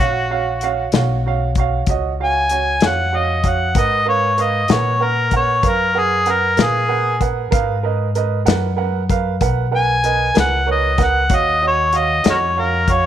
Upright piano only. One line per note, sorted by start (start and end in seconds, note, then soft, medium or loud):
0.00 0.22 F#4 medium
0.00 0.23 C#5 medium
0.00 0.23 F5 medium
0.30 0.54 F#4 medium
0.30 0.54 C#5 medium
0.30 0.54 F5 medium
0.63 0.86 F#4 medium
0.63 0.86 C#5 medium
0.63 0.86 F5 medium
0.94 1.17 F#4 medium
0.94 1.17 C#5 medium
0.94 1.18 F5 medium
1.26 1.49 F#4 medium
1.26 1.49 C#5 soft
1.26 1.49 F5 medium
1.57 1.80 F#4 medium
1.57 1.80 C#5 medium
1.57 1.81 F5 medium
1.89 2.12 F#4 medium
1.89 2.12 C#5 soft
1.89 2.12 D#5 medium
2.20 2.43 F#4 soft
2.20 2.43 C#5 soft
2.20 2.43 F5 medium
2.51 2.74 F#4 medium
2.51 2.74 C#5 soft
2.51 2.74 G#5 medium
2.82 3.05 F#4 soft
2.82 3.05 C#5 soft
2.82 3.06 F5 medium
3.12 3.36 F#4 soft
3.12 3.36 C#5 soft
3.12 3.37 F5 medium
3.44 3.68 F#4 soft
3.44 3.68 C#5 soft
3.44 3.68 F5 medium
3.76 3.99 A#4 medium
3.76 3.99 B4 medium
3.76 3.99 F#5 medium
4.06 4.30 A#4 medium
4.06 4.30 B4 soft
4.06 4.30 F5 medium
4.38 4.61 A#4 soft
4.38 4.62 B4 soft
4.38 4.62 F5 medium
4.69 4.93 A#4 soft
4.69 4.93 B4 soft
4.69 4.93 F#5 medium
5.00 5.24 A#4 soft
5.00 5.24 B4 soft
5.00 5.24 F#5 soft
5.32 5.56 A#4 soft
5.32 5.56 B4 soft
5.32 5.57 F#5 medium
5.63 5.87 A#4 soft
5.63 5.87 B4 soft
5.63 5.88 F5 medium
5.95 6.18 A#4 soft
5.95 6.19 B4 soft
5.95 6.19 F#5 soft
6.26 6.50 A#4 medium
6.26 6.50 B4 soft
6.26 6.50 F#5 medium
6.57 6.81 A#4 medium
6.57 6.81 B4 soft
6.57 6.82 F5 medium
6.88 7.13 A#4 medium
6.88 7.13 B4 medium
6.88 7.13 F#5 medium
7.20 7.44 A#4 medium
7.20 7.45 B4 soft
7.20 7.45 F#5 medium
7.51 7.75 A#4 medium
7.51 7.76 B4 medium
7.51 7.76 F5 medium
7.83 8.07 A#4 medium
7.83 8.07 B4 medium
7.83 8.08 D#5 medium
8.15 8.39 A#4 medium
8.15 8.39 B4 medium
8.15 8.40 D#5 medium
8.45 8.70 A#4 medium
8.45 8.70 B4 medium
8.45 8.70 F#5 medium
8.77 9.01 A#4 medium
8.77 9.01 B4 medium
8.77 9.02 F#5 medium
9.09 9.33 A#4 medium
9.09 9.33 B4 medium
9.09 9.34 F5 medium
9.41 9.65 A#4 medium
9.41 9.65 B4 medium
9.41 9.65 F#5 medium
9.71 9.96 A#4 medium
9.71 9.96 B4 soft
9.71 9.96 F#5 medium
10.04 10.28 A#4 soft
10.04 10.28 B4 medium
10.04 10.28 D#5 medium
10.34 10.59 A#4 medium
10.34 10.59 B4 medium
10.34 10.59 G#5 medium
10.66 10.90 A#4 medium
10.66 10.91 B4 medium
10.66 10.91 C#5 medium
10.98 11.22 A#4 medium
10.98 11.22 B4 soft
10.98 11.22 F#5 medium
11.30 11.54 F#4 medium
11.30 11.54 C#5 medium
11.30 11.54 F5 medium
11.62 11.85 F#4 medium
11.62 11.86 C#5 soft
11.62 11.86 D#5 medium
11.93 12.17 F#4 medium
11.93 12.17 C#5 soft
11.93 12.17 F5 medium
12.24 12.48 F#4 medium
12.24 12.48 C#5 medium
12.24 12.49 D#5 medium
12.57 12.80 F#4 medium
12.57 12.80 C#5 soft
12.57 12.81 F5 medium
12.88 13.06 F#4 soft
12.88 13.06 C#5 soft
12.88 13.06 F5 medium